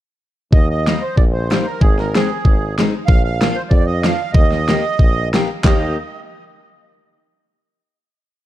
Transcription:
0.52 0.94 D#2 medium
0.52 0.68 D#5 medium
0.52 kick medium
0.70 1.03 D#5 medium
0.87 1.00 G3 medium
0.87 1.01 A#3 soft
0.87 1.01 D#4 medium
0.87 snare medium
1.02 1.16 C5 medium
1.17 1.59 A#1 medium
1.17 1.25 D5 medium
1.17 kick medium
1.33 1.66 C5 medium
1.50 1.64 G3 medium
1.50 1.65 A#3 medium
1.50 1.65 D#4 medium
1.50 snare medium
1.65 1.81 A#4 medium
1.81 2.23 G#1 medium
1.81 1.98 G#4 medium
1.81 kick medium
1.98 2.14 A#4 medium
1.98 snare soft
2.15 2.28 G#3 medium
2.15 2.29 C4 medium
2.15 2.29 D#4 medium
2.15 2.75 G#4 medium
2.15 snare medium
2.45 2.86 G#1 medium
2.45 kick medium
2.78 2.92 G#3 medium
2.78 2.92 C4 soft
2.78 2.93 D#4 medium
2.78 snare medium
3.06 3.49 A#1 medium
3.06 3.22 F5 loud
3.06 kick medium
3.24 3.57 F5 medium
3.41 3.55 A#3 medium
3.41 3.55 D4 soft
3.41 3.56 F4 medium
3.41 snare medium
3.55 3.62 C5 medium
3.69 4.12 F2 medium
3.69 3.86 D5 medium
3.69 kick medium
3.86 4.04 D#5 medium
4.03 4.18 A#3 medium
4.03 4.18 D4 medium
4.03 4.18 F4 medium
4.03 4.32 F5 medium
4.03 snare medium
4.32 4.76 D#2 medium
4.32 5.28 D#5 loud
4.32 kick medium
4.51 snare soft
4.68 4.82 A#3 medium
4.68 4.83 D#4 soft
4.68 4.83 G4 medium
4.68 snare medium
4.99 5.42 A#1 medium
4.99 kick medium
5.34 5.48 A#3 medium
5.34 5.48 D#4 medium
5.34 5.48 G4 medium
5.34 snare medium
5.64 5.96 D#2 medium
5.64 5.96 A#3 medium
5.64 5.96 D#4 medium
5.64 5.96 G4 medium
5.64 5.96 D#5 medium
5.64 kick medium
5.64 snare medium
5.64 clap medium

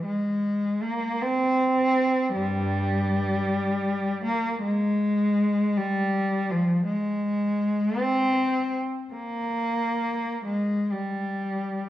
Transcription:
0.05 0.81 G#3 medium
0.82 1.21 A#3 medium
1.22 2.35 C4 medium
2.35 3.44 G2 medium
2.35 4.21 G3 medium
4.24 4.63 A#3 medium
4.63 5.74 G#3 medium
5.77 6.50 G3 medium
6.50 6.87 F3 medium
6.85 7.98 G#3 medium
8.00 8.75 C4 medium
9.13 10.39 A#3 medium
10.45 10.91 G#3 medium
10.92 11.89 G3 medium

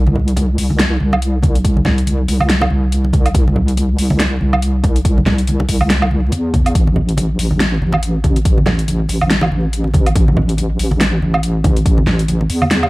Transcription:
0.00 0.57 C2 loud
0.07 muted conga soft
0.07 high conga medium
0.15 low conga medium
0.28 closed hi-hat medium
0.36 closed hi-hat medium
0.36 muted conga medium
0.36 high conga medium
0.58 0.99 C2 loud
0.58 open hi-hat medium
0.70 high conga medium
0.80 snare loud
0.80 closed hi-hat medium
0.80 muted conga medium
1.00 2.27 C2 loud
1.00 high conga medium
1.13 muted conga medium
1.13 low woodblock medium
1.22 closed hi-hat medium
1.43 kick loud
1.43 closed hi-hat medium
1.43 high conga medium
1.55 closed hi-hat soft
1.55 muted conga soft
1.64 kick loud
1.64 closed hi-hat medium
1.77 high conga medium
1.85 snare medium
1.85 muted conga medium
1.85 low conga medium
1.98 closed hi-hat medium
2.07 closed hi-hat medium
2.07 high conga medium
2.28 2.69 C2 medium
2.28 open hi-hat medium
2.28 muted conga medium
2.40 high conga medium
2.40 low woodblock medium
2.50 snare loud
2.50 closed hi-hat medium
2.62 muted conga medium
2.62 low woodblock medium
2.70 3.33 C2 loud
2.70 high conga medium
2.92 closed hi-hat medium
3.05 muted conga medium
3.13 kick loud
3.13 closed hi-hat soft
3.13 high conga medium
3.26 closed hi-hat soft
3.26 low woodblock medium
3.34 3.97 C2 loud
3.34 kick loud
3.34 closed hi-hat medium
3.34 muted conga medium
3.47 high conga medium
3.56 low conga medium
3.68 closed hi-hat soft
3.77 closed hi-hat medium
3.77 muted conga medium
3.77 high conga medium
3.98 4.40 C2 loud
3.98 open hi-hat loud
4.10 muted conga medium
4.10 high conga medium
4.20 snare loud
4.20 closed hi-hat medium
4.41 5.67 C2 medium
4.41 high conga medium
4.53 muted conga medium
4.53 low woodblock medium
4.62 closed hi-hat medium
4.84 kick loud
4.84 closed hi-hat medium
4.84 muted conga medium
4.84 high conga medium
4.96 closed hi-hat medium
5.05 kick loud
5.05 closed hi-hat medium
5.18 high conga medium
5.26 snare medium
5.26 muted conga medium
5.26 low conga loud
5.38 closed hi-hat medium
5.47 closed hi-hat medium
5.47 high conga medium
5.60 muted conga medium
5.69 6.31 C2 medium
5.69 kick medium
5.69 open hi-hat loud
5.81 high conga medium
5.81 low woodblock medium
5.90 snare loud
5.90 closed hi-hat medium
6.02 muted conga medium
6.02 low woodblock medium
6.11 high conga medium
6.32 6.74 E2 loud
6.32 closed hi-hat medium
6.32 muted conga medium
6.54 kick loud
6.54 closed hi-hat medium
6.54 high conga loud
6.66 closed hi-hat medium
6.66 low woodblock soft
6.75 7.37 A1 loud
6.75 kick loud
6.75 closed hi-hat medium
6.87 muted conga soft
6.87 high conga medium
6.96 low conga loud
7.09 closed hi-hat medium
7.17 closed hi-hat medium
7.17 muted conga medium
7.17 high conga medium
7.39 7.80 A1 loud
7.39 open hi-hat loud
7.51 high conga medium
7.60 snare loud
7.60 closed hi-hat medium
7.60 muted conga soft
7.81 9.08 A1 medium
7.81 high conga medium
7.93 muted conga medium
7.93 low woodblock medium
8.03 closed hi-hat medium
8.24 kick loud
8.24 closed hi-hat medium
8.24 high conga loud
8.36 closed hi-hat medium
8.36 muted conga medium
8.45 kick loud
8.45 closed hi-hat medium
8.58 high conga medium
8.66 snare medium
8.66 muted conga medium
8.66 low conga loud
8.79 closed hi-hat medium
8.88 closed hi-hat medium
8.88 high conga medium
9.09 9.50 A1 loud
9.09 open hi-hat medium
9.09 muted conga medium
9.21 high conga medium
9.21 low woodblock medium
9.30 snare loud
9.30 closed hi-hat medium
9.41 muted conga medium
9.41 low woodblock medium
9.52 10.14 A1 medium
9.52 high conga medium
9.73 closed hi-hat medium
9.84 muted conga medium
9.94 kick loud
9.94 closed hi-hat medium
9.94 high conga loud
10.06 closed hi-hat medium
10.06 low woodblock soft
10.15 10.78 A1 loud
10.15 kick loud
10.15 closed hi-hat medium
10.15 muted conga medium
10.28 high conga loud
10.37 low conga loud
10.49 closed hi-hat medium
10.57 closed hi-hat medium
10.57 muted conga soft
10.57 high conga medium
10.79 11.20 A1 medium
10.79 open hi-hat medium
10.91 muted conga medium
10.91 high conga medium
11.01 snare loud
11.01 closed hi-hat medium
11.22 12.48 A1 medium
11.22 high conga medium
11.34 muted conga soft
11.34 low woodblock medium
11.43 closed hi-hat medium
11.64 kick loud
11.64 closed hi-hat medium
11.64 muted conga medium
11.64 high conga loud
11.77 closed hi-hat medium
11.86 kick loud
11.86 closed hi-hat medium
11.98 high conga medium
12.07 snare medium
12.07 muted conga medium
12.07 low conga medium
12.19 closed hi-hat medium
12.28 closed hi-hat medium
12.28 high conga medium
12.41 muted conga medium
12.50 12.90 E2 medium
12.50 open hi-hat medium
12.62 high conga medium
12.62 low woodblock medium
12.71 snare loud
12.71 closed hi-hat medium
12.83 muted conga soft
12.83 low woodblock medium

